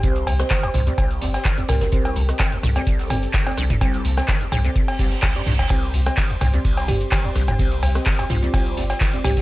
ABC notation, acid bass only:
X:1
M:4/4
L:1/16
Q:"Swing 16ths" 1/4=127
K:Cdor
V:1 name="Acid bass" clef=bass
C,,2 E,, z E, C,, B,,, D,, C,,2 E,, z E, C,, B,,, D,, | C,,2 E,, z E, C,, B,,, D,, C,,2 E,, z E, C,, B,,, D,, | C,,2 E,, z E, C,, B,,, D,, C,, z C,, z C,, G,, G,, D,, | C,,2 E,, z E, C,, B,,, D,, C,,2 E,, z E, C,, B,,, D,, |
C,,2 E,, z E, C,, B,,, D,, C,,2 E,, z E, C,, B,,, D,, |]